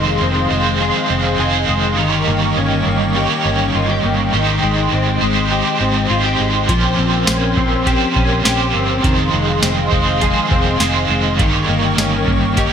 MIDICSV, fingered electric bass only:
0, 0, Header, 1, 2, 480
1, 0, Start_track
1, 0, Tempo, 588235
1, 1619, Time_signature, 4, 2, 24, 8
1, 10386, End_track
2, 0, Start_track
2, 0, Title_t, "Fingered electric bass"
2, 0, Program_c, 0, 33
2, 0, Note_on_c, 0, 29, 89
2, 149, Note_off_c, 0, 29, 0
2, 176, Note_on_c, 0, 29, 83
2, 388, Note_off_c, 0, 29, 0
2, 415, Note_on_c, 0, 29, 84
2, 734, Note_off_c, 0, 29, 0
2, 897, Note_on_c, 0, 29, 102
2, 1109, Note_off_c, 0, 29, 0
2, 1135, Note_on_c, 0, 29, 84
2, 1348, Note_off_c, 0, 29, 0
2, 1377, Note_on_c, 0, 29, 80
2, 1616, Note_off_c, 0, 29, 0
2, 1616, Note_on_c, 0, 31, 100
2, 1828, Note_off_c, 0, 31, 0
2, 1858, Note_on_c, 0, 31, 91
2, 2069, Note_off_c, 0, 31, 0
2, 2097, Note_on_c, 0, 31, 87
2, 2309, Note_off_c, 0, 31, 0
2, 2338, Note_on_c, 0, 31, 94
2, 2655, Note_off_c, 0, 31, 0
2, 2816, Note_on_c, 0, 31, 100
2, 3028, Note_off_c, 0, 31, 0
2, 3056, Note_on_c, 0, 31, 90
2, 3268, Note_off_c, 0, 31, 0
2, 3296, Note_on_c, 0, 31, 72
2, 3508, Note_off_c, 0, 31, 0
2, 3537, Note_on_c, 0, 32, 95
2, 3749, Note_off_c, 0, 32, 0
2, 3778, Note_on_c, 0, 32, 97
2, 3990, Note_off_c, 0, 32, 0
2, 4019, Note_on_c, 0, 32, 81
2, 4230, Note_off_c, 0, 32, 0
2, 4258, Note_on_c, 0, 32, 94
2, 4575, Note_off_c, 0, 32, 0
2, 4737, Note_on_c, 0, 32, 99
2, 4949, Note_off_c, 0, 32, 0
2, 4979, Note_on_c, 0, 32, 91
2, 5190, Note_off_c, 0, 32, 0
2, 5220, Note_on_c, 0, 32, 77
2, 5431, Note_off_c, 0, 32, 0
2, 5456, Note_on_c, 0, 34, 92
2, 5669, Note_off_c, 0, 34, 0
2, 5699, Note_on_c, 0, 34, 96
2, 5910, Note_off_c, 0, 34, 0
2, 5940, Note_on_c, 0, 34, 99
2, 6151, Note_off_c, 0, 34, 0
2, 6177, Note_on_c, 0, 34, 93
2, 6495, Note_off_c, 0, 34, 0
2, 6658, Note_on_c, 0, 34, 108
2, 6870, Note_off_c, 0, 34, 0
2, 6898, Note_on_c, 0, 34, 96
2, 7109, Note_off_c, 0, 34, 0
2, 7139, Note_on_c, 0, 31, 85
2, 7350, Note_off_c, 0, 31, 0
2, 7378, Note_on_c, 0, 29, 99
2, 7589, Note_off_c, 0, 29, 0
2, 7618, Note_on_c, 0, 29, 87
2, 7830, Note_off_c, 0, 29, 0
2, 7858, Note_on_c, 0, 29, 92
2, 8069, Note_off_c, 0, 29, 0
2, 8097, Note_on_c, 0, 29, 95
2, 8415, Note_off_c, 0, 29, 0
2, 8577, Note_on_c, 0, 29, 93
2, 8789, Note_off_c, 0, 29, 0
2, 8813, Note_on_c, 0, 29, 100
2, 9027, Note_off_c, 0, 29, 0
2, 9054, Note_on_c, 0, 29, 86
2, 9297, Note_off_c, 0, 29, 0
2, 9297, Note_on_c, 0, 31, 88
2, 9509, Note_off_c, 0, 31, 0
2, 9535, Note_on_c, 0, 31, 90
2, 9748, Note_off_c, 0, 31, 0
2, 9774, Note_on_c, 0, 31, 98
2, 9988, Note_off_c, 0, 31, 0
2, 10016, Note_on_c, 0, 31, 90
2, 10334, Note_off_c, 0, 31, 0
2, 10386, End_track
0, 0, End_of_file